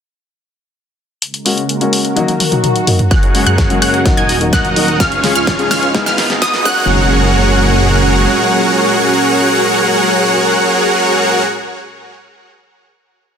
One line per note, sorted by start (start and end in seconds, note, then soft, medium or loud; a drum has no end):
1.22 2.16 C#3 medium
1.22 2.16 G#3 medium
1.22 3.09 A#3 medium
1.22 3.09 F#4 medium
1.22 3.09 A#4 medium
1.22 closed hi-hat medium
1.34 closed hi-hat soft
1.45 1.60 G#3 medium
1.45 1.60 A#3 medium
1.45 1.60 C#4 medium
1.45 1.60 F#4 medium
1.45 open hi-hat loud
1.58 closed hi-hat soft
1.69 closed hi-hat medium
1.80 2.13 G#3 medium
1.80 2.14 A#3 medium
1.80 2.14 C#4 medium
1.80 2.14 F#4 medium
1.80 closed hi-hat soft
1.93 open hi-hat loud
2.05 closed hi-hat soft
2.16 3.10 D#3 medium
2.16 2.31 F#3 loud
2.16 3.10 F#3 medium
2.16 2.31 A#3 medium
2.16 2.31 D#4 medium
2.16 2.31 F#4 loud
2.16 closed hi-hat medium
2.16 high tom medium
2.16 swell medium
2.28 closed hi-hat soft
2.28 high tom medium
2.40 open hi-hat loud
2.40 high tom medium
2.51 2.84 F#3 medium
2.51 2.84 A#3 medium
2.51 2.85 D#4 medium
2.51 2.85 F#4 medium
2.51 closed hi-hat soft
2.51 mid tom medium
2.64 closed hi-hat medium
2.64 mid tom medium
2.76 closed hi-hat soft
2.87 2.96 F#3 medium
2.87 2.96 A#3 medium
2.87 2.96 D#4 medium
2.87 2.97 F#4 medium
2.87 mid tom loud
2.87 open hi-hat loud
2.99 closed hi-hat soft
2.99 mid tom medium
3.11 3.44 F#1 medium
3.11 4.05 C#3 medium
3.11 4.04 F#3 medium
3.11 4.05 G#3 medium
3.11 4.05 A#3 medium
3.11 3.44 F#4 medium
3.11 4.98 F#4 medium
3.11 3.44 G#4 medium
3.11 3.44 A#4 medium
3.11 3.44 C#5 medium
3.11 3.44 F#5 loud
3.11 3.44 F#6 loud
3.11 kick loud
3.11 snare soft
3.11 closed hi-hat medium
3.11 riser medium
3.23 closed hi-hat soft
3.34 3.49 G#3 medium
3.34 3.49 A#3 medium
3.34 3.49 C#4 medium
3.34 3.49 F#4 medium
3.34 open hi-hat loud
3.46 3.80 F#2 medium
3.46 3.79 F#4 medium
3.46 3.79 G#4 medium
3.46 3.79 A#4 medium
3.46 3.79 C#5 medium
3.46 3.79 F#5 medium
3.46 3.79 F#6 medium
3.46 closed hi-hat soft
3.58 kick loud
3.58 snare medium
3.58 closed hi-hat medium
3.69 4.02 G#3 medium
3.69 4.03 A#3 medium
3.69 4.03 C#4 medium
3.69 4.03 F#4 medium
3.69 closed hi-hat soft
3.82 4.15 F#2 medium
3.82 3.99 F#4 medium
3.82 3.99 G#4 medium
3.82 3.99 A#4 medium
3.82 3.99 C#5 medium
3.82 3.99 F#5 loud
3.82 3.99 F#6 loud
3.82 open hi-hat loud
3.94 closed hi-hat soft
4.05 4.99 A#2 medium
4.05 4.99 D#3 medium
4.05 4.20 F#3 medium
4.05 4.99 F#3 medium
4.05 4.20 A#3 medium
4.05 4.99 D#4 medium
4.05 4.20 D#4 medium
4.05 4.20 F#4 loud
4.05 kick loud
4.05 snare medium
4.05 closed hi-hat medium
4.17 4.50 D#1 medium
4.17 4.35 D#4 medium
4.17 4.35 F#4 medium
4.17 4.35 A#4 medium
4.17 4.35 D#5 medium
4.17 4.35 G#5 medium
4.17 4.35 G#6 medium
4.17 closed hi-hat soft
4.29 open hi-hat loud
4.41 4.73 F#3 medium
4.41 4.74 A#3 medium
4.41 4.74 D#4 medium
4.41 4.74 F#4 medium
4.41 closed hi-hat soft
4.53 4.98 D#1 loud
4.53 4.97 D#4 loud
4.53 4.97 F#4 medium
4.53 4.97 A#4 medium
4.53 4.97 D#5 medium
4.53 4.97 F#5 loud
4.53 4.97 F#6 loud
4.53 kick loud
4.53 snare medium
4.53 closed hi-hat medium
4.65 closed hi-hat soft
4.76 4.85 F#3 medium
4.76 4.85 A#3 medium
4.76 4.85 D#4 medium
4.76 4.86 F#4 medium
4.76 open hi-hat loud
4.88 closed hi-hat soft
5.00 5.33 C#2 loud
5.00 6.64 G#2 medium
5.00 5.94 C#3 medium
5.00 5.94 F3 medium
5.00 5.94 C#4 medium
5.00 5.33 C#4 medium
5.00 5.33 F4 medium
5.00 5.94 F4 medium
5.00 5.33 G#4 medium
5.00 5.33 C#5 medium
5.00 5.33 F5 loud
5.00 5.33 F6 loud
5.00 kick loud
5.00 snare medium
5.00 closed hi-hat medium
5.12 closed hi-hat soft
5.23 5.38 C#3 medium
5.23 5.38 G#3 medium
5.23 5.38 C#4 medium
5.23 5.38 F4 medium
5.23 5.38 G#4 medium
5.23 snare medium
5.23 open hi-hat loud
5.35 5.68 C#2 loud
5.35 5.68 C#4 medium
5.35 5.68 F4 medium
5.35 5.68 G#4 medium
5.35 5.68 C#5 medium
5.35 5.68 F5 medium
5.35 5.68 F6 medium
5.35 closed hi-hat soft
5.47 kick loud
5.47 snare medium
5.47 closed hi-hat medium
5.58 5.91 C#3 medium
5.58 5.92 G#3 medium
5.58 5.92 C#4 medium
5.58 5.92 F4 medium
5.58 5.92 G#4 medium
5.58 closed hi-hat soft
5.71 6.04 C#2 loud
5.71 5.88 C#4 loud
5.71 5.88 F4 medium
5.71 5.88 G#4 medium
5.71 5.88 C#5 medium
5.71 5.88 F5 loud
5.71 5.88 F6 loud
5.71 snare medium
5.71 open hi-hat loud
5.83 closed hi-hat soft
5.94 6.08 G#2 loud
5.94 6.65 B2 medium
5.94 6.65 D#3 medium
5.94 6.09 G#3 medium
5.94 6.65 B3 medium
5.94 6.09 B3 medium
5.94 6.65 D#4 medium
5.94 6.09 D#4 medium
5.94 6.09 G#4 loud
5.94 kick loud
5.94 snare medium
5.94 closed hi-hat medium
6.06 6.39 G#1 loud
6.06 6.24 B3 medium
6.06 6.24 D#4 medium
6.06 6.24 G#4 medium
6.06 6.24 B4 medium
6.06 6.24 F5 medium
6.06 6.24 F6 medium
6.06 snare medium
6.06 closed hi-hat soft
6.18 snare loud
6.18 open hi-hat loud
6.29 6.62 G#2 medium
6.29 6.62 G#3 medium
6.29 6.63 B3 medium
6.29 6.63 D#4 medium
6.29 6.63 G#4 medium
6.29 snare medium
6.29 closed hi-hat soft
6.42 6.65 G#1 loud
6.42 6.65 B3 loud
6.42 6.65 D#4 medium
6.42 6.64 G#4 medium
6.42 6.65 B4 medium
6.42 6.65 D#5 loud
6.42 6.65 D#6 loud
6.42 kick loud
6.42 snare loud
6.42 closed hi-hat medium
6.54 snare loud
6.54 closed hi-hat soft
6.64 8.27 F#1 loud
6.64 11.43 A#2 medium
6.64 11.43 F#3 medium
6.64 11.58 G#3 medium
6.64 11.43 G#3 medium
6.64 11.59 A#3 medium
6.64 11.43 C#4 medium
6.64 11.60 C#4 medium
6.64 11.43 F#4 medium
6.64 11.61 F#4 loud
6.64 11.43 G#4 medium
6.64 11.43 A#4 medium
6.64 11.43 C#5 medium
6.64 11.43 F#5 loud
6.64 11.60 F#6 loud
6.64 kick loud
6.64 crash medium
6.64 impact medium